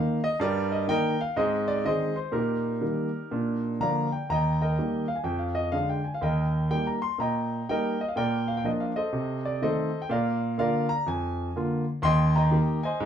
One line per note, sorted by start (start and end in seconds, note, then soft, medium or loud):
0.00 0.19 D#3 medium
0.00 0.19 A#3 medium
0.00 0.20 D#4 medium
0.00 0.23 F5 medium
0.24 0.40 D#5 medium
0.40 0.81 G2 medium
0.40 0.70 G4 medium
0.40 0.69 A#4 medium
0.40 0.71 D5 loud
0.72 0.88 D#5 medium
0.88 1.14 D#3 soft
0.88 1.15 A#3 soft
0.88 1.15 D#4 soft
0.88 1.18 A#4 medium
0.88 1.18 D#5 medium
0.88 1.19 G5 medium
1.21 1.37 F5 medium
1.36 1.77 G#2 medium
1.36 1.64 C4 soft
1.36 1.66 G#4 medium
1.36 1.66 C5 medium
1.36 1.68 D#5 medium
1.68 1.85 D5 medium
1.85 2.11 D#3 soft
1.85 2.12 G#3 soft
1.85 2.12 C4 soft
1.85 2.15 G#4 medium
1.85 2.14 C5 medium
1.85 2.16 D#5 medium
2.16 2.33 C5 medium
2.32 2.74 A#2 medium
2.32 3.75 D#4 medium
2.32 3.75 G4 soft
2.32 3.79 A#4 medium
2.81 3.08 D#3 soft
2.81 3.08 G3 soft
2.81 3.08 A#3 soft
3.31 3.72 A#2 medium
3.31 3.59 D4 soft
3.80 4.07 D3 soft
3.80 4.07 F3 soft
3.80 4.07 A#3 soft
3.80 4.10 D5 medium
3.80 4.10 F5 medium
3.80 4.11 A#5 medium
4.12 4.28 G5 medium
4.29 4.70 D#2 medium
4.29 4.59 D#5 medium
4.29 4.59 G5 medium
4.29 4.60 A#5 medium
4.61 5.06 A#4 soft
4.61 5.06 D#5 medium
4.61 5.09 G5 medium
4.79 5.05 D#3 soft
4.79 5.05 G3 soft
4.79 5.05 A#3 soft
5.08 5.16 F5 medium
5.16 5.24 G#5 medium
5.24 5.65 F2 medium
5.24 5.40 G5 medium
5.39 5.55 F5 medium
5.55 5.73 D#5 medium
5.71 5.99 D3 soft
5.71 5.99 G#3 soft
5.71 6.00 D4 soft
5.71 5.88 F5 medium
5.89 6.05 G5 medium
6.04 6.13 G#5 soft
6.14 6.22 F5 medium
6.21 6.63 D#2 medium
6.21 6.68 A#4 medium
6.21 6.68 D#5 medium
6.21 6.69 G5 medium
6.71 6.97 G3 soft
6.71 6.97 A#3 soft
6.71 6.98 D#4 soft
6.71 6.86 G5 medium
6.87 7.02 A#5 medium
7.02 7.19 C6 medium
7.18 7.60 A#2 medium
7.18 7.65 D#5 medium
7.18 7.65 G5 medium
7.18 7.68 A#5 medium
7.69 7.96 G3 soft
7.69 7.95 A#3 soft
7.69 7.96 D#4 soft
7.69 7.99 A#4 medium
7.69 7.99 D#5 medium
7.69 8.00 G5 medium
8.01 8.09 D#5 medium
8.08 8.17 F5 medium
8.16 8.57 A#2 medium
8.16 8.46 A#4 medium
8.16 8.46 D5 medium
8.16 8.48 G5 medium
8.48 8.56 F5 medium
8.57 8.65 G5 medium
8.64 8.91 F3 soft
8.64 8.91 A#3 soft
8.64 8.92 D4 soft
8.64 8.81 D#5 medium
8.80 8.96 F5 medium
8.96 9.42 A4 soft
8.96 9.42 C5 soft
8.96 9.45 D#5 medium
9.13 9.54 C3 medium
9.45 9.62 D5 medium
9.62 9.89 D#3 soft
9.62 9.89 A3 soft
9.62 9.89 C4 soft
9.62 10.00 A4 medium
9.62 10.01 C5 medium
9.62 10.02 D#5 medium
10.02 10.11 G5 medium
10.09 10.51 A#2 medium
10.09 10.57 A#4 medium
10.09 10.57 D5 medium
10.09 10.57 F5 medium
10.58 10.85 D3 soft
10.58 10.85 A#3 medium
10.58 10.85 F4 medium
10.58 10.89 A#4 medium
10.58 10.89 D5 medium
10.58 10.91 F5 medium
10.89 11.07 A#5 medium
11.06 11.48 F2 medium
11.06 11.56 G#5 medium
11.56 11.83 D3 soft
11.56 11.83 A#3 medium
11.56 11.83 F4 medium
12.02 12.45 D#2 medium
12.02 12.34 D#5 medium
12.02 12.34 G5 medium
12.02 12.35 C6 loud
12.35 12.82 D#5 medium
12.35 12.82 G5 medium
12.35 12.84 A#5 medium
12.51 12.79 D#3 medium
12.51 12.79 A#3 soft
12.51 12.79 G4 medium
12.83 13.05 C5 medium
12.83 13.05 D#5 medium
12.83 13.05 G#5 medium
13.00 13.05 G#2 medium